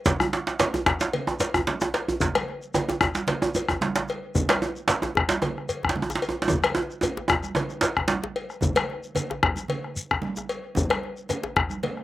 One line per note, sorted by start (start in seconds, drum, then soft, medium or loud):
0.06 bombo low loud
0.06 djembe slap soft
0.06 djembe slap loud
0.06 low conga medium
0.06 djembe bass medium
0.06 shekere medium
0.20 bombo rim medium
0.20 djembe slap soft
0.20 high conga medium
0.20 djembe bass medium
0.33 djembe slap medium
0.33 djembe slap soft
0.47 djembe slap medium
0.47 shekere soft
0.59 bombo rim soft
0.59 cowbell medium
0.59 djembe slap loud
0.59 low conga medium
0.59 shekere medium
0.74 bombo rim soft
0.74 djembe slap medium
0.74 djembe tone medium
0.74 djembe bass medium
0.86 bombo rim medium
0.86 bombo low medium
0.86 djembe slap medium
0.86 djembe slap soft
0.86 djembe bass medium
1.00 djembe slap medium
1.00 shekere soft
1.13 cowbell medium
1.13 low conga medium
1.27 bombo rim soft
1.27 djembe tone medium
1.40 cowbell medium
1.40 djembe slap medium
1.40 high conga soft
1.40 shekere medium
1.54 bombo rim medium
1.54 bombo low medium
1.54 djembe bass medium
1.67 djembe slap medium
1.67 high conga medium
1.67 low conga medium
1.81 bombo rim soft
1.81 djembe slap medium
1.81 djembe tone loud
1.81 djembe tone medium
1.81 shekere soft
1.94 cowbell medium
1.94 djembe slap medium
1.94 djembe slap soft
1.94 shekere soft
2.08 djembe bass medium
2.20 bombo low medium
2.20 djembe slap soft
2.20 djembe slap medium
2.20 low conga medium
2.20 djembe bass medium
2.20 shekere medium
2.35 bombo rim medium
2.35 cowbell medium
2.35 djembe slap soft
2.35 high conga medium
2.48 djembe slap soft
2.62 shekere soft
2.74 bombo rim soft
2.74 cowbell medium
2.74 djembe tone loud
2.74 low conga medium
2.74 shekere medium
2.89 bombo rim soft
2.89 djembe slap medium
2.89 djembe tone medium
3.01 bombo rim medium
3.01 bombo low medium
3.01 djembe slap soft
3.01 djembe tone medium
3.01 djembe bass medium
3.15 djembe slap medium
3.15 high conga medium
3.15 shekere soft
3.27 cowbell medium
3.27 djembe slap medium
3.27 low conga medium
3.42 bombo rim soft
3.42 djembe tone loud
3.55 cowbell soft
3.55 high conga soft
3.55 djembe tone medium
3.55 shekere medium
3.68 bombo rim medium
3.68 bombo low medium
3.68 djembe slap soft
3.68 djembe tone medium
3.68 djembe bass medium
3.81 djembe slap medium
3.81 djembe slap soft
3.81 high conga medium
3.81 low conga medium
3.96 bombo rim soft
3.96 djembe slap medium
3.96 djembe tone medium
3.96 shekere soft
4.08 cowbell medium
4.08 djembe slap soft
4.08 shekere soft
4.35 bombo low loud
4.35 djembe slap soft
4.35 djembe bass medium
4.35 low conga medium
4.35 shekere medium
4.49 bombo rim medium
4.49 cowbell medium
4.49 djembe slap loud
4.49 djembe slap soft
4.49 high conga medium
4.62 djembe slap soft
4.62 djembe tone medium
4.76 shekere soft
4.88 bombo rim soft
4.88 cowbell soft
4.88 djembe slap loud
4.88 low conga medium
4.88 shekere medium
5.02 bombo rim soft
5.02 djembe slap medium
5.02 djembe tone medium
5.15 bombo rim medium
5.15 bombo low loud
5.15 djembe bass medium
5.29 djembe slap loud
5.29 high conga medium
5.29 shekere soft
5.42 cowbell soft
5.42 djembe tone medium
5.42 low conga medium
5.58 bombo rim soft
5.69 cowbell medium
5.69 high conga soft
5.69 shekere medium
5.83 bombo rim medium
5.83 bombo low medium
5.83 djembe slap soft
5.83 djembe bass medium
5.89 djembe slap medium
5.96 djembe slap soft
5.96 high conga medium
5.96 low conga medium
6.02 djembe tone medium
6.10 bombo rim soft
6.10 djembe slap medium
6.10 djembe tone medium
6.10 shekere soft
6.15 djembe slap medium
6.22 cowbell soft
6.22 djembe slap soft
6.22 shekere soft
6.29 djembe tone medium
6.42 djembe slap medium
6.48 bombo low loud
6.48 djembe slap soft
6.48 djembe tone loud
6.48 low conga medium
6.48 djembe bass medium
6.48 shekere soft
6.63 bombo rim medium
6.63 cowbell medium
6.63 djembe slap soft
6.63 high conga medium
6.63 shekere soft
6.75 bombo rim soft
6.75 djembe tone loud
6.90 shekere soft
7.01 bombo rim soft
7.01 cowbell medium
7.01 djembe tone medium
7.01 low conga medium
7.01 shekere medium
7.17 djembe slap medium
7.17 djembe tone medium
7.28 bombo rim loud
7.28 bombo low medium
7.28 djembe slap soft
7.28 djembe tone loud
7.28 djembe bass medium
7.28 shekere soft
7.43 djembe slap soft
7.43 high conga medium
7.43 shekere soft
7.55 bombo rim soft
7.55 cowbell medium
7.55 djembe slap soft
7.55 djembe tone loud
7.55 low conga medium
7.55 shekere soft
7.69 djembe slap soft
7.69 high conga soft
7.69 shekere soft
7.81 cowbell medium
7.81 djembe slap loud
7.81 shekere medium
7.97 bombo rim medium
7.97 bombo low medium
7.97 djembe slap soft
7.97 djembe bass medium
8.08 djembe slap loud
8.08 high conga medium
8.08 low conga medium
8.08 shekere soft
8.24 djembe slap medium
8.24 djembe tone medium
8.36 cowbell soft
8.36 djembe slap soft
8.49 bombo rim soft
8.49 high conga soft
8.49 shekere soft
8.61 bombo low loud
8.61 djembe slap soft
8.61 low conga medium
8.61 djembe bass medium
8.61 shekere medium
8.75 bombo rim medium
8.75 cowbell medium
8.75 djembe slap soft
8.75 high conga medium
8.90 djembe slap soft
9.03 shekere soft
9.15 bombo rim soft
9.15 cowbell medium
9.15 low conga medium
9.15 shekere medium
9.30 bombo rim soft
9.30 djembe slap medium
9.30 djembe tone medium
9.43 bombo rim loud
9.43 bombo low loud
9.43 djembe slap soft
9.43 djembe bass medium
9.56 high conga medium
9.56 shekere soft
9.68 cowbell medium
9.68 low conga medium
9.84 bombo rim soft
9.95 high conga soft
9.95 shekere medium
10.11 bombo rim medium
10.11 bombo low medium
10.11 djembe slap soft
10.11 djembe bass medium
10.22 djembe slap soft
10.22 high conga medium
10.22 low conga medium
10.36 bombo rim soft
10.36 djembe tone medium
10.36 shekere medium
10.49 cowbell medium
10.49 djembe slap soft
10.49 shekere soft
10.75 bombo low loud
10.75 djembe slap soft
10.75 low conga medium
10.75 djembe bass medium
10.75 shekere medium
10.89 bombo rim medium
10.89 cowbell medium
10.89 djembe slap soft
10.89 high conga medium
11.03 djembe slap soft
11.17 shekere soft
11.29 bombo rim soft
11.29 cowbell medium
11.29 low conga medium
11.29 shekere medium
11.43 bombo rim soft
11.43 djembe slap medium
11.43 djembe tone medium
11.56 bombo rim medium
11.56 bombo low medium
11.56 djembe slap soft
11.56 djembe bass medium
11.70 high conga medium
11.70 shekere soft
11.83 cowbell medium
11.83 low conga medium
11.97 bombo rim soft